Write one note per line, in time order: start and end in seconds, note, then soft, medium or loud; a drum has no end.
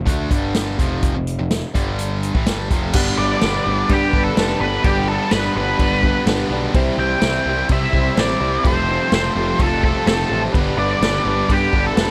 0.06 0.29 D2 medium
0.06 0.29 D3 medium
0.06 0.30 A3 loud
0.06 0.30 D4 loud
0.06 kick loud
0.06 closed hi-hat medium
0.30 0.75 G1 medium
0.30 0.78 G2 medium
0.30 0.78 D3 medium
0.30 0.79 G3 medium
0.30 kick loud
0.30 closed hi-hat medium
0.54 snare loud
0.54 closed hi-hat medium
0.78 1.12 F1 medium
0.78 1.14 F2 medium
0.78 1.14 C3 loud
0.78 1.14 C3 medium
0.78 1.14 F3 medium
0.78 1.15 F3 loud
0.78 kick loud
0.78 closed hi-hat medium
1.03 kick loud
1.03 closed hi-hat medium
1.15 1.37 F1 medium
1.15 1.34 F2 medium
1.15 1.34 C3 medium
1.27 closed hi-hat medium
1.39 1.61 F1 medium
1.39 1.58 F2 medium
1.39 1.58 C3 medium
1.51 snare loud
1.51 closed hi-hat medium
1.74 2.30 G1 medium
1.74 2.33 G2 medium
1.74 2.34 G2 medium
1.74 2.34 D3 medium
1.74 2.34 G3 medium
1.74 2.34 G3 loud
1.74 kick loud
1.74 closed hi-hat medium
1.99 closed hi-hat medium
2.23 closed hi-hat medium
2.34 2.46 A1 medium
2.34 2.46 A2 medium
2.34 2.46 E3 loud
2.34 kick loud
2.46 2.69 G1 medium
2.46 2.69 G2 medium
2.46 2.70 G2 medium
2.46 2.70 D3 medium
2.46 2.70 G3 loud
2.46 2.70 G3 medium
2.46 snare loud
2.46 closed hi-hat medium
2.70 2.93 F1 medium
2.70 2.93 F2 medium
2.70 2.94 F2 medium
2.70 2.94 C3 medium
2.70 2.94 F3 medium
2.70 2.93 F3 loud
2.70 kick loud
2.70 closed hi-hat medium
2.93 3.11 G1 medium
2.93 3.42 G2 loud
2.93 3.42 D3 loud
2.93 3.40 G3 medium
2.93 6.72 G3 medium
2.93 3.43 G3 loud
2.93 3.13 B3 loud
2.93 3.42 B3 loud
2.93 6.72 B3 medium
2.93 3.41 D4 loud
2.93 3.14 D4 loud
2.93 6.72 D4 medium
2.93 3.13 G4 loud
2.93 3.14 B4 loud
2.93 6.71 B4 medium
2.93 3.44 B4 loud
2.93 kick loud
2.93 crash loud
2.93 crash medium
2.97 3.43 B3 loud
2.97 3.44 D4 loud
3.18 3.35 G1 loud
3.18 3.43 G3 medium
3.18 3.37 B3 medium
3.18 3.44 B3 medium
3.18 3.37 D4 medium
3.18 3.46 D4 medium
3.18 3.37 G4 medium
3.18 3.37 B4 medium
3.18 3.92 D5 loud
3.41 3.58 G1 loud
3.41 3.66 G2 medium
3.41 3.66 D3 loud
3.41 4.35 G3 medium
3.41 3.67 G3 loud
3.41 3.60 B3 medium
3.41 3.67 B3 loud
3.41 3.68 B3 loud
3.41 3.61 D4 medium
3.41 3.68 D4 medium
3.41 3.68 D4 loud
3.41 3.61 G4 medium
3.41 3.61 B4 medium
3.41 3.65 B4 loud
3.41 snare loud
3.41 crash medium
3.65 3.82 G1 medium
3.65 3.89 G2 medium
3.65 3.90 D3 medium
3.65 3.91 G3 medium
3.65 3.84 B3 medium
3.65 4.13 B3 medium
3.65 3.90 B3 loud
3.65 3.85 D4 medium
3.65 4.15 D4 medium
3.65 3.91 D4 loud
3.65 3.85 G4 medium
3.65 4.11 B4 medium
3.65 3.85 B4 medium
3.89 4.06 G2 loud
3.89 4.36 G2 loud
3.89 4.37 D3 loud
3.89 4.38 G3 loud
3.89 4.09 B3 medium
3.89 4.38 B3 loud
3.89 4.08 D4 medium
3.89 4.38 D4 loud
3.89 4.09 G4 medium
3.89 4.23 G4 medium
3.89 4.09 B4 medium
3.89 kick medium
3.89 crash medium
4.12 4.30 G1 medium
4.12 4.32 B3 medium
4.12 4.37 B3 medium
4.12 4.38 B3 medium
4.12 4.39 D4 medium
4.12 4.32 D4 medium
4.12 4.36 D4 medium
4.12 4.32 G4 medium
4.12 4.38 B4 medium
4.12 4.33 B4 medium
4.12 kick medium
4.17 4.38 G3 medium
4.24 4.58 A4 loud
4.36 4.53 F1 loud
4.36 4.60 G2 medium
4.36 4.60 D3 loud
4.36 4.82 G3 medium
4.36 4.62 G3 loud
4.36 4.56 B3 loud
4.36 4.84 B3 medium
4.36 4.61 B3 loud
4.36 4.56 D4 medium
4.36 4.83 D4 medium
4.36 4.62 D4 loud
4.36 4.56 G4 medium
4.36 4.56 B4 loud
4.36 4.85 B4 medium
4.36 snare loud
4.36 crash medium
4.59 4.77 G1 medium
4.59 4.84 G2 medium
4.59 4.85 D3 medium
4.59 4.86 G3 loud
4.59 4.79 B3 loud
4.59 4.86 B3 medium
4.59 4.79 D4 loud
4.59 4.86 D4 loud
4.59 4.79 G4 medium
4.59 4.79 A4 loud
4.59 4.85 B4 medium
4.83 5.17 G1 medium
4.83 5.32 G2 medium
4.83 5.32 D3 loud
4.83 5.31 G3 medium
4.83 5.33 G3 loud
4.83 5.03 B3 medium
4.83 5.33 B3 loud
4.83 5.32 D4 loud
4.83 5.04 D4 medium
4.83 5.34 D4 loud
4.83 5.03 G4 medium
4.83 5.07 G4 medium
4.83 5.04 B4 loud
4.83 5.34 B4 loud
4.83 kick loud
4.83 crash medium
5.07 5.27 B3 medium
5.07 5.32 B3 medium
5.07 5.27 D4 medium
5.07 5.33 D4 medium
5.07 5.27 G4 medium
5.07 5.30 A4 medium
5.07 5.27 B4 medium
5.11 5.32 G3 medium
5.31 5.48 G1 loud
5.31 5.55 G2 medium
5.31 5.56 D3 medium
5.31 6.26 G3 medium
5.31 5.57 G3 medium
5.31 5.51 B3 medium
5.31 5.55 B3 loud
5.31 5.56 B3 medium
5.31 5.51 D4 medium
5.31 5.56 D4 medium
5.31 5.57 D4 medium
5.31 5.51 G4 medium
5.31 5.51 B4 medium
5.31 5.56 B4 medium
5.31 5.53 B4 loud
5.31 snare loud
5.31 crash medium
5.54 5.72 G1 medium
5.54 5.79 G2 medium
5.54 5.79 D3 loud
5.54 5.80 G3 loud
5.54 5.75 B3 medium
5.54 6.03 B3 medium
5.54 5.80 B3 medium
5.54 5.75 D4 medium
5.54 6.04 D4 medium
5.54 5.80 D4 medium
5.54 5.75 G4 medium
5.54 6.01 B4 medium
5.54 5.75 B4 medium
5.54 6.24 B4 medium
5.79 6.12 G1 medium
5.79 6.26 G2 loud
5.79 6.27 D3 loud
5.79 6.29 G3 loud
5.79 5.99 B3 medium
5.79 6.28 B3 loud
5.79 5.99 D4 medium
5.79 6.28 D4 loud
5.79 5.99 G4 medium
5.79 5.99 B4 medium
5.79 kick medium
5.79 crash medium
6.02 6.27 G3 medium
6.02 6.23 B3 medium
6.02 6.28 B3 medium
6.02 6.28 D4 medium
6.02 6.23 D4 medium
6.02 6.27 D4 medium
6.02 6.23 G4 medium
6.02 6.29 B4 medium
6.02 6.23 B4 medium
6.02 kick medium
6.26 6.43 G1 loud
6.26 6.50 G2 medium
6.26 6.50 D3 medium
6.26 6.75 G3 medium
6.26 6.52 G3 loud
6.26 6.46 B3 loud
6.26 6.51 B3 loud
6.26 6.74 B3 medium
6.26 6.46 D4 loud
6.26 6.74 D4 medium
6.26 6.51 D4 loud
6.26 6.46 G4 loud
6.26 6.46 B4 loud
6.26 snare loud
6.26 crash medium
6.31 6.75 B4 medium
6.50 6.67 B1 medium
6.50 6.73 G2 medium
6.50 6.74 D3 medium
6.50 6.75 G3 medium
6.50 6.70 B3 loud
6.50 6.74 B3 loud
6.50 6.70 D4 loud
6.50 6.74 D4 loud
6.50 6.70 G4 loud
6.50 6.70 B4 loud
6.74 6.91 C2 medium
6.74 7.21 C3 medium
6.74 7.22 C3 medium
6.74 7.21 E3 loud
6.74 8.63 G3 medium
6.74 7.23 G3 medium
6.74 7.23 G3 loud
6.74 8.62 C4 medium
6.74 6.94 C4 loud
6.74 7.23 C4 loud
6.74 6.94 E4 loud
6.74 8.64 E4 medium
6.74 7.23 E4 loud
6.74 6.94 G4 loud
6.74 6.94 C5 loud
6.74 8.63 C5 medium
6.74 7.25 C5 loud
6.74 kick loud
6.74 crash medium
6.97 7.15 C2 loud
6.97 7.22 G3 medium
6.97 7.23 C4 medium
6.97 7.18 C4 medium
6.97 7.23 E4 medium
6.97 7.18 E4 medium
6.97 7.18 G4 medium
6.97 7.18 C5 medium
6.97 7.66 G5 loud
7.22 7.38 C2 loud
7.22 7.70 C3 loud
7.22 7.46 C3 medium
7.22 7.70 E3 loud
7.22 7.47 G3 loud
7.22 7.49 G3 loud
7.22 7.48 C4 loud
7.22 7.42 C4 medium
7.22 7.47 C4 loud
7.22 7.42 E4 medium
7.22 7.47 E4 medium
7.22 7.46 E4 loud
7.22 7.42 G4 medium
7.22 7.42 C5 medium
7.22 7.45 C5 loud
7.22 snare loud
7.22 crash medium
7.45 7.62 C2 medium
7.45 7.70 C3 medium
7.45 7.71 G3 medium
7.45 7.70 C4 medium
7.45 7.66 C4 medium
7.45 7.93 C4 medium
7.45 7.92 E4 medium
7.45 7.66 E4 medium
7.45 7.71 E4 loud
7.45 7.66 G4 medium
7.45 7.91 C5 medium
7.45 7.66 C5 medium
7.49 7.95 G3 medium
7.69 7.86 C3 loud
7.69 8.17 C3 loud
7.69 8.18 G3 loud
7.69 7.89 C4 medium
7.69 8.18 C4 loud
7.69 7.89 E4 medium
7.69 8.18 E4 loud
7.69 7.90 G4 medium
7.69 7.90 C5 medium
7.69 8.20 E5 loud
7.69 kick medium
7.69 crash medium
7.93 8.10 C2 medium
7.93 8.16 G3 medium
7.93 8.18 G3 medium
7.93 8.18 C4 medium
7.93 8.16 C4 medium
7.93 8.13 C4 medium
7.93 8.19 E4 medium
7.93 8.18 E4 medium
7.93 8.13 E4 medium
7.93 8.13 G4 medium
7.93 8.18 C5 medium
7.93 8.13 C5 medium
7.93 kick medium
8.16 8.34 A1 loud
8.16 8.40 C3 medium
8.16 8.64 G3 medium
8.16 8.42 G3 medium
8.16 8.36 C4 medium
8.16 8.63 C4 medium
8.16 8.41 C4 medium
8.16 8.36 E4 medium
8.16 8.64 E4 medium
8.16 8.42 E4 loud
8.16 8.36 G4 medium
8.16 8.36 C5 loud
8.16 8.64 C5 loud
8.16 8.63 D5 medium
8.16 snare loud
8.16 crash medium
8.40 8.57 C2 medium
8.40 8.63 C3 medium
8.40 8.66 G3 loud
8.40 8.60 C4 medium
8.40 8.64 C4 medium
8.40 8.60 E4 loud
8.40 8.64 E4 loud
8.40 8.60 G4 medium
8.40 8.60 C5 loud
8.63 8.97 F1 loud
8.63 9.12 F2 medium
8.63 9.12 C3 loud
8.63 9.10 F3 loud
8.63 9.12 F3 medium
8.63 10.52 G3 medium
8.63 9.11 A3 medium
8.63 9.13 A3 loud
8.63 10.52 C4 medium
8.63 9.12 C4 loud
8.63 8.84 C4 loud
8.63 9.13 C4 loud
8.63 10.52 F4 medium
8.63 8.84 F4 medium
8.63 9.13 F4 loud
8.63 8.84 G4 medium
8.63 10.53 A4 medium
8.63 8.84 A4 loud
8.63 9.14 A4 loud
8.63 9.14 C5 loud
8.63 kick loud
8.63 crash medium
8.88 9.12 F3 medium
8.88 9.13 A3 medium
8.88 9.14 C4 medium
8.88 9.07 C4 medium
8.88 9.07 F4 medium
8.88 9.08 G4 medium
8.88 9.08 A4 medium
9.11 9.28 F1 loud
9.11 9.34 F2 medium
9.11 9.35 C3 medium
9.11 9.59 F3 loud
9.11 9.35 F3 medium
9.11 9.60 A3 loud
9.11 9.36 A3 loud
9.11 9.31 C4 medium
9.11 9.38 C4 loud
9.11 9.36 C4 loud
9.11 9.31 F4 medium
9.11 9.36 F4 loud
9.11 9.31 G4 medium
9.11 9.32 A4 medium
9.11 snare loud
9.11 crash medium
9.15 9.35 A4 loud
9.15 9.62 C5 medium
9.35 9.52 F1 medium
9.35 9.58 F2 medium
9.35 9.59 C3 medium
9.35 9.59 F3 medium
9.35 9.60 A3 loud
9.35 9.55 C4 medium
9.35 9.60 C4 loud
9.35 9.86 C4 medium
9.35 9.55 F4 medium
9.35 9.84 F4 medium
9.35 9.55 G4 medium
9.35 9.82 A4 medium
9.35 9.56 A4 medium
9.59 9.92 F1 loud
9.59 10.06 F2 loud
9.59 10.06 C3 loud
9.59 10.06 F3 loud
9.59 10.07 A3 loud
9.59 9.79 C4 medium
9.59 10.07 C4 loud
9.59 9.79 F4 medium
9.59 9.79 G4 medium
9.59 9.79 A4 medium
9.59 9.83 A4 medium
9.59 kick medium
9.59 crash medium
9.82 10.07 F3 medium
9.82 10.08 A3 medium
9.82 10.08 C4 medium
9.82 10.02 C4 medium
9.82 10.02 F4 medium
9.82 10.07 F4 medium
9.82 10.02 G4 medium
9.82 10.08 A4 medium
9.82 10.02 A4 medium
9.82 10.07 A4 medium
9.82 kick medium
9.87 10.06 C4 medium
10.06 10.23 F1 medium
10.06 10.29 F2 medium
10.06 10.29 C3 medium
10.06 10.30 F3 medium
10.06 10.53 A3 medium
10.06 10.30 A3 medium
10.06 10.26 C4 medium
10.06 10.53 C4 medium
10.06 10.31 C4 medium
10.06 10.26 F4 medium
10.06 10.54 F4 medium
10.06 10.26 G4 medium
10.06 10.26 A4 loud
10.06 10.41 A4 medium
10.06 10.54 A4 medium
10.06 snare loud
10.06 crash medium
10.29 10.47 A1 medium
10.29 10.53 F2 medium
10.29 10.53 C3 medium
10.29 10.54 F3 medium
10.29 10.54 A3 medium
10.29 10.49 C4 loud
10.29 10.54 C4 medium
10.29 10.49 F4 medium
10.29 10.49 G4 medium
10.29 10.49 A4 loud
10.52 10.71 G1 medium
10.52 11.02 G2 medium
10.52 11.01 D3 loud
10.52 11.01 G3 medium
10.52 12.11 G3 medium
10.52 11.03 G3 medium
10.52 10.72 B3 loud
10.52 12.11 B3 medium
10.52 11.03 B3 loud
10.52 10.72 D4 loud
10.52 12.11 D4 medium
10.52 11.02 D4 loud
10.52 11.03 D4 loud
10.52 10.73 G4 medium
10.52 10.73 B4 loud
10.52 12.11 B4 medium
10.52 kick loud
10.52 crash medium
10.56 11.04 B4 loud
10.77 10.94 G1 medium
10.77 10.97 B3 medium
10.77 11.03 B3 medium
10.77 11.04 D4 medium
10.77 10.97 D4 medium
10.77 10.97 G4 medium
10.77 10.97 B4 medium
10.77 11.52 D5 loud
10.81 11.02 G3 medium
11.01 11.18 G1 loud
11.01 11.25 G2 medium
11.01 11.25 D3 medium
11.01 11.95 G3 medium
11.01 11.26 G3 loud
11.01 11.21 B3 medium
11.01 11.26 B3 loud
11.01 11.27 B3 medium
11.01 11.21 D4 medium
11.01 11.28 D4 medium
11.01 11.27 D4 loud
11.01 11.21 G4 medium
11.01 11.21 B4 medium
11.01 11.24 B4 loud
11.01 snare loud
11.01 crash medium
11.25 11.42 G1 medium
11.25 11.48 G2 medium
11.25 11.49 D3 medium
11.25 11.50 G3 medium
11.25 11.45 B3 medium
11.25 11.72 B3 medium
11.25 11.50 B3 medium
11.25 11.45 D4 medium
11.25 11.50 D4 loud
11.25 11.74 D4 medium
11.25 11.45 G4 medium
11.25 11.70 B4 medium
11.25 11.45 B4 medium
11.49 11.66 G2 loud
11.49 11.95 G2 loud
11.49 11.96 D3 loud
11.49 11.97 G3 loud
11.49 11.69 B3 medium
11.49 11.97 B3 loud
11.49 11.69 D4 medium
11.49 11.97 D4 loud
11.49 11.69 G4 medium
11.49 11.84 G4 medium
11.49 11.69 B4 medium
11.49 kick medium
11.49 crash medium
11.71 11.90 G1 medium
11.71 11.92 B3 medium
11.71 11.96 B3 medium
11.71 11.98 B3 medium
11.71 11.91 D4 medium
11.71 11.99 D4 medium
11.71 11.95 D4 medium
11.71 11.92 G4 medium
11.71 11.92 A4 medium
11.71 11.97 B4 medium
11.71 kick medium
11.75 11.98 G3 medium
11.87 12.11 A4 loud
11.95 12.11 F1 loud
11.95 12.11 G2 medium
11.95 12.11 D3 loud
11.95 12.11 G3 medium
11.95 12.11 B3 loud
11.95 12.11 B3 medium
11.95 12.11 D4 medium
11.95 12.11 D4 loud
11.95 12.11 G4 medium
11.95 12.11 B4 loud
11.95 12.11 B4 medium
11.95 snare loud
11.95 crash medium